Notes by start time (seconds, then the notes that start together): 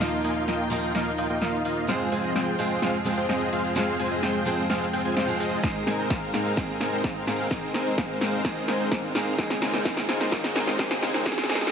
Already playing: D#2 D#3 A#3 F4
0.00 F3 A#3 D#4 F4 A#4 D#5 F5, snare, closed hi-hat
0.13 closed hi-hat
0.24 A#3 D#4 F4 D#5 G#5, open hi-hat
0.36 A#3 D#4 F4 D#5 F5, closed hi-hat
0.48 A#3 D#4 F4 D#5 G5, snare, closed hi-hat
0.60 closed hi-hat
0.70 F3 A#3 D#4 F4 A#4 D#5 G5, open hi-hat
0.83 closed hi-hat
0.95 A#3 D#4 F4 D#5 F5, snare, closed hi-hat
1.07 closed hi-hat
1.18 A#3 D#4 F4 D#5 G5, open hi-hat
1.30 A#3 D#4 F4 D#5 G5, closed hi-hat
1.42 A#3 D#4 F4 D#5 F5, snare, closed hi-hat
1.53 closed hi-hat
1.65 A#3 D#4 F4 D#5 F5, open hi-hat
1.77 closed hi-hat
1.87 F2 F3 G#3 C4 F4 G#4 C5 F5, snare, closed hi-hat
2.00 closed hi-hat
2.12 G#3 C4 F4 C5 G#5, open hi-hat
2.24 G#3 C4 F4 C5 D#5, closed hi-hat
2.35 G#3 C4 F4 C5 G5, snare, closed hi-hat
2.47 closed hi-hat
2.58 F3 G#3 C4 F4 G#4 C5 G5, open hi-hat
2.71 closed hi-hat
2.82 G#3 C4 F4 C5 F5, snare, closed hi-hat
2.94 closed hi-hat
3.04 F3 G#3 C4 F4 G#4 C5 G5, open hi-hat
3.17 G#3 C4 F4 C5 G5, closed hi-hat
3.29 G#3 C4 F4 C5 D#5, snare, closed hi-hat
3.41 closed hi-hat
3.53 G#3 C4 F4 C5 F5, open hi-hat
3.64 closed hi-hat
3.75 F3 G#3 C4 F4 G#4 C5 F5, snare, closed hi-hat
3.88 closed hi-hat
3.99 G#3 C4 F4 C5 G#5, open hi-hat
4.11 G#3 C4 F4 C5 D#5, closed hi-hat
4.23 G#3 C4 F4 C5 G5, snare, closed hi-hat
4.35 closed hi-hat
4.45 F3 G#3 C4 F4 G#4 C5 G5, open hi-hat
4.58 closed hi-hat
4.70 G#3 C4 F4 C5 F5, snare, closed hi-hat
4.82 closed hi-hat
4.93 G#3 C4 F4 C5 G5, open hi-hat
5.05 G#3 C4 F4 C5 G#5, closed hi-hat
5.17 G#3 C4 F4 C5 G5, snare, closed hi-hat
5.28 F3 G#3 C4 G#4, closed hi-hat
5.40 G#3 C4 F4 C5 D#5, open hi-hat
5.52 closed hi-hat
5.62 G#2 D#3 G#3 A#3 C4 D#4 G#4 A#4 D#5, kick, snare, closed hi-hat, riser
5.75 closed hi-hat
5.87 G#3 C4 D#4 A#4 G#5, snare, open hi-hat
5.99 G#3 C4 D#4 A#4 C5, closed hi-hat
6.10 G#3 C4 D#4 A#4 F5, kick, snare, closed hi-hat
6.22 closed hi-hat
6.33 G#2 D#3 G#3 A#3 C4 D#4 G#4 A#4 F5, snare, open hi-hat
6.45 closed hi-hat
6.56 G#2 D#3 G#3 A#3 C4 D#4 G#4 A#4 D#5, kick, snare, closed hi-hat
6.69 closed hi-hat
6.81 G#3 C4 D#4 A#4 G#5, snare, open hi-hat
6.92 G#3 C4 D#4 A#4 C5, closed hi-hat
7.04 G#3 C4 D#4 A#4 F5, kick, snare, closed hi-hat
7.16 closed hi-hat
7.27 G#2 D#3 G#3 A#3 C4 D#4 G#4 A#4 F5, snare, open hi-hat
7.39 closed hi-hat
7.50 G#2 D#3 G#3 A#3 C4 D#4 G#4 A#4 C5 D#5, kick, snare, closed hi-hat
7.63 closed hi-hat
7.74 G#3 C4 D#4 A#4 G#5, snare, open hi-hat
7.86 G#3 C4 D#4 A#4 C5, closed hi-hat
7.98 G#3 C4 D#4 A#4 F5, kick, snare, closed hi-hat
8.10 closed hi-hat
8.21 G#2 D#3 G#3 A#3 C4 D#4 G#4 A#4 F5, snare, open hi-hat
8.33 closed hi-hat
8.44 G#2 D#3 G#3 A#3 C4 D#4 G#4 A#4 D#5, kick, snare, closed hi-hat
8.56 closed hi-hat
8.68 G#3 C4 D#4 A#4 G#5, snare, open hi-hat
8.80 G#3 C4 D#4 A#4 C5, closed hi-hat
8.92 G#3 C4 D#4 A#4 F5, kick, snare, closed hi-hat
9.03 closed hi-hat
9.14 G#2 D#3 G#3 A#3 C4 D#4 G#4 A#4 F5, snare, open hi-hat
9.27 closed hi-hat
9.37 G#2 C#3 D#3 G#3 A#3 C4 D#4 F4 G#4 A#4 D#5, kick, snare, closed hi-hat
9.50 snare, closed hi-hat
9.62 G#3 C4 D#4 A#4 G#5, snare, open hi-hat
9.74 G#3 C4 D#4 A#4 C5, snare, closed hi-hat
9.84 G#2 D#3 G#3 A#3 C4 D#4 G#4 A#4 D#5, kick, snare, closed hi-hat
9.97 snare, closed hi-hat
10.09 G#3 C4 D#4 A#4 G#5, snare, open hi-hat
10.20 G#3 C4 D#4 A#4 C5, snare, closed hi-hat
10.31 G#2 D#3 G#3 A#3 C4 D#4 G#4 A#4 D#5, kick, snare, closed hi-hat
10.44 snare, closed hi-hat
10.56 G#3 C4 D#4 A#4 G#5, snare, open hi-hat
10.67 G#3 C4 D#4 A#4 C5, snare, closed hi-hat
10.78 G#2 D#3 G#3 A#3 C4 D#4 G#4 A#4 D#5, kick, snare, closed hi-hat
10.91 snare, closed hi-hat
11.03 G#3 C4 D#4 A#4 G#5, snare, open hi-hat
11.14 G#3 C4 D#4 A#4 C5, snare, closed hi-hat
11.25 G#2 D#3 G#3 A#3 C4 D#4 G#4 A#4 D#5, kick, snare, closed hi-hat
11.32 snare
11.38 snare, closed hi-hat
11.44 snare
11.48 G#2 D#3 G#3 A#3 C4 D#4 G#4 A#4 D#5, snare, open hi-hat
11.55 snare
11.61 snare, closed hi-hat
11.67 snare